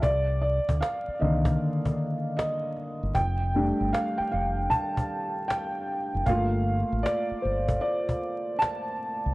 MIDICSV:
0, 0, Header, 1, 5, 480
1, 0, Start_track
1, 0, Key_signature, -1, "major"
1, 0, Tempo, 779221
1, 20, Time_signature, 4, 2, 24, 8
1, 5755, End_track
2, 0, Start_track
2, 0, Title_t, "Felt piano"
2, 0, Program_c, 0, 0
2, 0, Control_c, 0, 64, 127
2, 14, Note_on_c, 0, 74, 97
2, 28, Control_c, 0, 64, 0
2, 127, Control_c, 0, 64, 127
2, 240, Note_off_c, 0, 74, 0
2, 256, Note_on_c, 0, 74, 83
2, 496, Note_on_c, 0, 77, 86
2, 505, Note_off_c, 0, 74, 0
2, 737, Note_on_c, 0, 75, 74
2, 743, Note_on_c, 0, 51, 49
2, 745, Note_off_c, 0, 77, 0
2, 746, Note_on_c, 0, 58, 46
2, 750, Note_on_c, 0, 50, 61
2, 1194, Note_off_c, 0, 75, 0
2, 1457, Note_on_c, 0, 75, 88
2, 1917, Note_off_c, 0, 51, 0
2, 1919, Note_off_c, 0, 58, 0
2, 1921, Note_off_c, 0, 50, 0
2, 1937, Note_on_c, 0, 79, 104
2, 1948, Control_c, 0, 64, 0
2, 1953, Note_off_c, 0, 75, 0
2, 2054, Control_c, 0, 64, 127
2, 2182, Note_on_c, 0, 55, 60
2, 2186, Note_on_c, 0, 57, 51
2, 2191, Note_on_c, 0, 62, 68
2, 2394, Note_off_c, 0, 79, 0
2, 2418, Note_on_c, 0, 77, 101
2, 2563, Note_off_c, 0, 77, 0
2, 2571, Note_on_c, 0, 79, 94
2, 2602, Note_off_c, 0, 79, 0
2, 2656, Note_on_c, 0, 77, 82
2, 2876, Note_off_c, 0, 55, 0
2, 2879, Note_off_c, 0, 57, 0
2, 2881, Note_off_c, 0, 62, 0
2, 2894, Note_on_c, 0, 81, 99
2, 2905, Note_off_c, 0, 77, 0
2, 3375, Note_on_c, 0, 79, 96
2, 3392, Note_off_c, 0, 81, 0
2, 3855, Note_on_c, 0, 77, 105
2, 3864, Note_on_c, 0, 57, 58
2, 3867, Control_c, 0, 64, 0
2, 3868, Note_on_c, 0, 58, 53
2, 3871, Note_on_c, 0, 65, 68
2, 3872, Note_off_c, 0, 79, 0
2, 3958, Control_c, 0, 64, 127
2, 4313, Note_off_c, 0, 77, 0
2, 4331, Note_on_c, 0, 74, 96
2, 4572, Note_on_c, 0, 72, 73
2, 4583, Note_off_c, 0, 74, 0
2, 4812, Note_on_c, 0, 74, 94
2, 4823, Note_off_c, 0, 72, 0
2, 5292, Note_on_c, 0, 81, 100
2, 5311, Note_off_c, 0, 74, 0
2, 5751, Note_off_c, 0, 81, 0
2, 5755, Note_off_c, 0, 57, 0
2, 5755, Note_off_c, 0, 58, 0
2, 5755, Note_off_c, 0, 65, 0
2, 5755, End_track
3, 0, Start_track
3, 0, Title_t, "Fingered electric bass"
3, 0, Program_c, 1, 33
3, 22, Note_on_c, 1, 36, 105
3, 361, Note_off_c, 1, 36, 0
3, 428, Note_on_c, 1, 38, 96
3, 496, Note_off_c, 1, 38, 0
3, 750, Note_on_c, 1, 36, 82
3, 953, Note_off_c, 1, 36, 0
3, 1866, Note_on_c, 1, 31, 84
3, 1935, Note_off_c, 1, 31, 0
3, 1945, Note_on_c, 1, 29, 104
3, 2283, Note_off_c, 1, 29, 0
3, 2343, Note_on_c, 1, 31, 81
3, 2413, Note_off_c, 1, 31, 0
3, 2669, Note_on_c, 1, 29, 85
3, 2872, Note_off_c, 1, 29, 0
3, 3785, Note_on_c, 1, 29, 76
3, 3854, Note_off_c, 1, 29, 0
3, 3863, Note_on_c, 1, 31, 116
3, 4202, Note_off_c, 1, 31, 0
3, 4265, Note_on_c, 1, 33, 99
3, 4334, Note_off_c, 1, 33, 0
3, 4589, Note_on_c, 1, 31, 76
3, 4792, Note_off_c, 1, 31, 0
3, 5704, Note_on_c, 1, 36, 74
3, 5755, Note_off_c, 1, 36, 0
3, 5755, End_track
4, 0, Start_track
4, 0, Title_t, "Cajon"
4, 18, Note_on_c, 9, 36, 105
4, 79, Note_off_c, 9, 36, 0
4, 272, Note_on_c, 9, 38, 41
4, 334, Note_off_c, 9, 38, 0
4, 423, Note_on_c, 9, 36, 94
4, 485, Note_off_c, 9, 36, 0
4, 508, Note_on_c, 9, 38, 102
4, 569, Note_off_c, 9, 38, 0
4, 736, Note_on_c, 9, 38, 42
4, 798, Note_off_c, 9, 38, 0
4, 894, Note_on_c, 9, 36, 109
4, 956, Note_off_c, 9, 36, 0
4, 966, Note_on_c, 9, 38, 43
4, 1028, Note_off_c, 9, 38, 0
4, 1142, Note_on_c, 9, 36, 83
4, 1204, Note_off_c, 9, 36, 0
4, 1219, Note_on_c, 9, 38, 38
4, 1281, Note_off_c, 9, 38, 0
4, 1471, Note_on_c, 9, 38, 109
4, 1533, Note_off_c, 9, 38, 0
4, 1703, Note_on_c, 9, 38, 47
4, 1764, Note_off_c, 9, 38, 0
4, 1940, Note_on_c, 9, 36, 101
4, 2001, Note_off_c, 9, 36, 0
4, 2194, Note_on_c, 9, 38, 39
4, 2256, Note_off_c, 9, 38, 0
4, 2429, Note_on_c, 9, 38, 96
4, 2491, Note_off_c, 9, 38, 0
4, 2658, Note_on_c, 9, 38, 34
4, 2719, Note_off_c, 9, 38, 0
4, 2903, Note_on_c, 9, 36, 81
4, 2965, Note_off_c, 9, 36, 0
4, 3063, Note_on_c, 9, 36, 90
4, 3125, Note_off_c, 9, 36, 0
4, 3141, Note_on_c, 9, 38, 39
4, 3202, Note_off_c, 9, 38, 0
4, 3390, Note_on_c, 9, 38, 109
4, 3452, Note_off_c, 9, 38, 0
4, 3859, Note_on_c, 9, 36, 99
4, 3920, Note_off_c, 9, 36, 0
4, 4114, Note_on_c, 9, 38, 42
4, 4176, Note_off_c, 9, 38, 0
4, 4348, Note_on_c, 9, 38, 109
4, 4410, Note_off_c, 9, 38, 0
4, 4578, Note_on_c, 9, 38, 41
4, 4639, Note_off_c, 9, 38, 0
4, 4734, Note_on_c, 9, 36, 105
4, 4795, Note_off_c, 9, 36, 0
4, 4982, Note_on_c, 9, 36, 82
4, 5044, Note_off_c, 9, 36, 0
4, 5058, Note_on_c, 9, 38, 40
4, 5120, Note_off_c, 9, 38, 0
4, 5310, Note_on_c, 9, 38, 109
4, 5372, Note_off_c, 9, 38, 0
4, 5755, End_track
5, 0, Start_track
5, 0, Title_t, "Muted fingered electric bass strokes"
5, 666, Note_on_c, 9, 29, 49
5, 727, Note_off_c, 9, 29, 0
5, 2584, Note_on_c, 9, 29, 43
5, 2646, Note_off_c, 9, 29, 0
5, 4505, Note_on_c, 9, 29, 42
5, 4566, Note_off_c, 9, 29, 0
5, 5755, End_track
0, 0, End_of_file